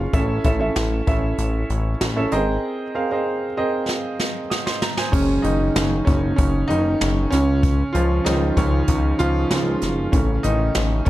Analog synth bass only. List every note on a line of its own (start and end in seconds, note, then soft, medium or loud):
0.13 0.39 A1 loud
0.45 0.70 A1 loud
0.76 1.02 A1 loud
1.08 1.33 A1 loud
1.38 1.64 A1 loud
1.70 1.95 A1 loud
2.01 2.27 A1 loud
2.33 2.58 G#1 medium
5.13 5.39 F#1 loud
5.44 5.70 F#1 loud
5.76 6.01 F#1 loud
6.07 6.33 F#1 loud
6.38 6.64 F#1 loud
6.70 6.96 F#1 loud
7.02 7.27 F#1 loud
7.33 7.84 C#2 loud
7.95 8.20 C#2 loud
8.26 8.52 C#2 loud
8.57 8.83 C#2 loud
8.88 9.14 C#2 loud
9.20 9.45 C#2 loud
9.51 9.77 C#2 loud
9.82 10.08 F#1 medium
10.13 10.39 A1 loud
10.45 10.70 A1 loud
10.76 11.02 A1 loud